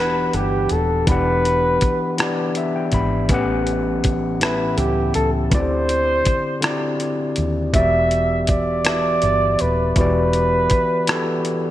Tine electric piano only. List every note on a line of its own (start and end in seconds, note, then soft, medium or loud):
0.00 1.07 E3 medium
0.00 1.08 B3 medium
0.00 1.08 D4 medium
0.00 3.31 F#4 soft
0.00 0.06 G4 medium
0.00 1.12 F#5 medium
0.06 1.03 G4 soft
1.07 2.08 E3 medium
1.07 2.09 B3 medium
1.07 2.09 D4 medium
1.11 2.10 G4 medium
1.11 2.11 F#5 medium
2.17 3.19 E3 medium
2.17 3.20 B3 medium
2.17 3.21 D4 medium
2.22 3.21 G4 medium
2.22 3.22 D5 medium
2.57 2.74 E5 medium
2.76 2.92 G5 medium
2.94 3.28 B5 medium
3.29 4.31 A2 medium
3.29 4.31 E3 medium
3.29 4.32 B3 medium
3.29 4.32 C#4 medium
3.29 4.33 G4 medium
3.34 4.33 F#5 medium
4.40 5.42 A2 medium
4.40 5.42 E3 soft
4.40 5.43 B3 medium
4.40 5.43 C#4 medium
4.40 5.43 G4 soft
4.44 5.44 E5 medium
5.50 6.52 D3 medium
5.50 6.53 C4 medium
5.50 6.53 E4 medium
5.50 5.59 F#4 soft
5.55 6.55 D5 medium
5.60 6.57 G4 medium
6.61 7.63 D3 medium
6.61 7.64 C4 medium
6.61 7.64 E4 medium
6.61 6.70 F#4 soft
6.65 7.65 D5 medium
6.70 7.68 G4 medium
7.73 8.75 E3 medium
7.73 8.76 B3 medium
7.73 8.76 F#4 medium
7.73 8.77 G4 medium
7.78 8.77 D5 medium
8.84 9.86 E3 medium
8.84 9.87 B3 soft
8.84 9.87 F#4 medium
8.84 9.88 G4 medium
8.89 9.88 E5 medium
9.96 10.98 E3 medium
9.96 10.98 B3 medium
9.96 10.99 F#4 medium
9.96 10.99 G4 medium
10.01 11.00 D5 medium
11.07 11.71 E3 medium
11.07 11.71 B3 medium
11.07 11.71 F#4 medium
11.07 11.71 G4 medium
11.12 11.71 A4 medium